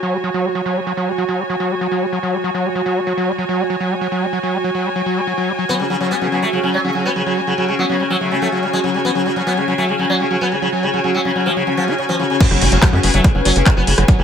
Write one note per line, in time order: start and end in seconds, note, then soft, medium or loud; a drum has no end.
0.00 0.15 F#3 medium
0.00 12.41 F#4 medium
0.00 14.24 F#4 medium
0.00 14.24 C#5 medium
0.00 14.24 G#5 medium
0.13 0.17 G#3 medium
0.24 0.30 F#3 medium
0.34 0.46 F#3 medium
0.45 0.49 G#3 medium
0.55 0.61 F#3 medium
0.66 0.78 F#3 medium
0.76 0.80 G#3 medium
0.87 0.93 F#3 medium
0.97 1.09 F#3 medium
1.08 1.12 G#3 medium
1.18 1.24 F#3 medium
1.29 1.41 F#3 medium
1.39 1.43 G#3 medium
1.50 1.56 F#3 medium
1.60 1.72 F#3 medium
1.71 1.75 G#3 medium
1.81 1.87 F#3 medium
1.92 2.04 F#3 medium
2.02 2.06 G#3 medium
2.13 2.19 F#3 medium
2.23 2.35 F#3 medium
2.33 2.38 G#3 medium
2.44 2.50 F#3 medium
2.54 2.66 F#3 medium
2.65 2.69 G#3 medium
2.75 2.82 F#3 medium
2.86 2.98 F#3 medium
2.96 3.01 G#3 medium
3.07 3.13 F#3 medium
3.17 3.29 F#3 medium
3.28 3.32 G#3 medium
3.38 3.45 F#3 medium
3.49 3.61 F#3 medium
3.59 3.63 G#3 medium
3.70 3.76 F#3 medium
3.80 3.92 F#3 medium
3.91 3.95 G#3 medium
4.01 4.07 F#3 medium
4.12 4.24 F#3 medium
4.22 4.26 G#3 medium
4.33 4.39 F#3 medium
4.43 4.55 F#3 medium
4.54 4.58 G#3 medium
4.64 4.70 F#3 medium
4.75 4.87 F#3 medium
4.85 4.89 G#3 medium
4.96 5.02 F#3 medium
5.06 5.18 F#3 medium
5.17 5.21 G#3 medium
5.27 5.33 F#3 medium
5.38 5.50 F#3 medium
5.48 5.52 G#3 medium
5.59 5.65 F#3 medium
5.69 5.81 F#3 medium
5.69 5.75 B3 medium
5.80 5.85 C#3 medium
5.80 5.84 G#3 medium
5.90 5.96 C#3 medium
5.90 5.96 F#3 medium
6.01 6.06 C#3 medium
6.01 6.13 F#3 medium
6.11 6.15 G#3 medium
6.11 6.16 B3 medium
6.22 6.27 C#3 medium
6.22 6.28 F#3 medium
6.22 6.28 B3 medium
6.32 6.37 C#3 medium
6.32 6.44 F#3 medium
6.32 6.39 B3 medium
6.43 6.47 G#3 medium
6.43 6.48 A3 medium
6.53 6.58 C#3 medium
6.53 6.59 F#3 medium
6.63 6.69 C#3 medium
6.63 6.76 F#3 medium
6.74 6.79 F#3 medium
6.74 6.78 G#3 medium
6.84 6.90 C#3 medium
6.84 6.91 F#3 medium
6.84 6.95 C#4 medium
6.95 7.00 C#3 medium
6.95 7.07 F#3 medium
7.05 7.10 G#3 medium
7.05 7.11 B3 medium
7.16 7.21 C#3 medium
7.16 7.22 F#3 medium
7.26 7.32 C#3 medium
7.26 7.38 F#3 medium
7.37 7.41 G#3 medium
7.47 7.53 C#3 medium
7.47 7.54 F#3 medium
7.58 7.63 C#3 medium
7.58 7.70 F#3 medium
7.68 7.74 C#3 medium
7.68 7.73 G#3 medium
7.79 7.84 F#3 medium
7.79 7.85 F#3 medium
7.79 7.86 B3 medium
7.89 7.95 C#3 medium
7.89 8.01 F#3 medium
7.89 7.96 B3 medium
8.00 8.05 C#3 medium
8.00 8.04 G#3 medium
8.10 8.16 F#3 medium
8.10 8.17 F#3 medium
8.21 8.26 C#3 medium
8.21 8.33 F#3 medium
8.21 8.63 A3 medium
8.31 8.37 C#3 medium
8.31 8.36 G#3 medium
8.42 8.48 F#3 medium
8.42 8.47 A3 medium
8.52 8.58 C#3 medium
8.52 8.64 F#3 medium
8.63 8.68 C#3 medium
8.63 8.67 G#3 medium
8.73 8.80 F#3 medium
8.73 8.79 G#3 medium
8.84 8.89 C#3 medium
8.84 8.96 F#3 medium
8.94 9.00 C#3 medium
8.94 8.98 G#3 medium
9.05 9.11 F#3 medium
9.05 9.10 B3 loud
9.15 9.21 C#3 medium
9.15 9.27 F#3 medium
9.26 9.31 C#3 medium
9.26 9.30 G#3 medium
9.36 9.42 C#3 medium
9.36 9.42 F#3 medium
9.47 9.59 F#3 medium
9.47 9.52 B3 medium
9.57 9.63 C#3 medium
9.57 9.61 G#3 medium
9.68 9.73 C#3 medium
9.68 9.74 F#3 medium
9.78 9.90 F#3 medium
9.78 9.84 A3 medium
9.89 9.94 C#3 medium
9.89 9.93 G#3 medium
9.99 10.05 C#3 medium
9.99 10.05 F#3 medium
10.10 10.15 F#3 loud
10.10 10.22 F#3 medium
10.20 10.26 C#3 medium
10.20 10.24 G#3 medium
10.31 10.36 C#3 medium
10.31 10.37 F#3 medium
10.41 10.53 F#3 medium
10.41 10.47 B3 medium
10.52 10.57 C#3 medium
10.52 10.56 G#3 medium
10.62 10.68 C#3 medium
10.62 10.68 F#3 medium
10.73 10.85 F#3 medium
10.83 10.89 C#3 medium
10.83 10.87 G#3 medium
10.94 10.99 C#3 medium
10.94 11.00 F#3 medium
11.04 11.10 C#3 medium
11.04 11.16 F#3 medium
11.15 11.20 F#3 medium
11.15 11.19 G#3 medium
11.25 11.30 C#3 medium
11.25 11.31 F#3 medium
11.36 11.41 C#3 medium
11.36 11.48 F#3 medium
11.46 11.51 F3 medium
11.46 11.50 G#3 medium
11.57 11.62 C#3 medium
11.57 11.63 F#3 medium
11.67 11.72 C#3 medium
11.67 11.70 F#3 medium
11.77 11.83 F3 medium
11.77 11.90 F#3 medium
11.88 11.93 C#3 medium
11.88 11.94 F#4 medium
11.98 12.04 C#3 medium
12.09 12.14 F3 medium
12.09 12.12 F#3 medium
12.19 12.25 C#3 medium
12.19 12.24 F3 medium
12.30 12.35 C#3 medium
12.40 12.47 F#3 medium
12.40 12.46 B3 loud
12.40 14.24 B4 medium
12.40 kick loud
12.40 closed hi-hat medium
12.40 crash loud
12.40 impact medium
12.51 12.58 F#1 medium
12.51 12.56 C#3 medium
12.51 12.63 F#3 medium
12.51 cross-stick soft
12.61 12.68 F#1 loud
12.61 12.67 C#3 medium
12.61 12.66 G#3 medium
12.61 open hi-hat loud
12.72 12.79 F#1 medium
12.72 12.77 C#3 medium
12.72 12.78 F#3 medium
12.72 closed hi-hat medium
12.82 12.94 F#3 medium
12.82 12.88 B3 medium
12.82 kick loud
12.82 cross-stick medium
12.82 clap loud
12.82 closed hi-hat medium
12.93 13.00 F#2 medium
12.93 12.98 C#3 medium
12.93 12.97 G#3 medium
12.93 13.00 B3 medium
13.03 13.10 F#1 loud
13.03 13.09 C#3 medium
13.03 13.10 F#3 medium
13.03 13.10 B3 medium
13.03 open hi-hat loud
13.14 13.21 F#1 medium
13.14 13.26 F#3 medium
13.14 13.19 A3 loud
13.14 closed hi-hat medium
13.24 13.30 C#3 medium
13.24 13.29 G#3 medium
13.24 kick loud
13.24 cross-stick soft
13.24 closed hi-hat medium
13.35 13.42 F#1 medium
13.35 13.40 C#3 medium
13.35 13.41 F#3 medium
13.45 13.52 F#1 loud
13.45 13.51 F#3 loud
13.45 13.57 F#3 medium
13.45 open hi-hat loud
13.56 13.63 F#1 loud
13.56 13.61 C#3 medium
13.56 13.60 G#3 medium
13.56 closed hi-hat medium
13.66 13.72 C#3 medium
13.66 13.73 F#3 medium
13.66 kick loud
13.66 cross-stick soft
13.66 clap loud
13.66 closed hi-hat medium
13.77 13.84 F#1 medium
13.77 13.89 F#3 medium
13.77 13.82 B3 medium
13.87 13.94 F#1 loud
13.87 13.93 C#3 medium
13.87 13.91 G#3 medium
13.87 open hi-hat loud
13.98 14.05 F#1 medium
13.98 14.03 C#3 medium
13.98 14.04 F#3 medium
13.98 cross-stick medium
13.98 closed hi-hat medium
14.08 14.20 F#3 medium
14.08 kick loud
14.08 closed hi-hat medium
14.19 14.24 F#1 medium
14.19 14.24 C#3 medium
14.19 14.23 G#3 medium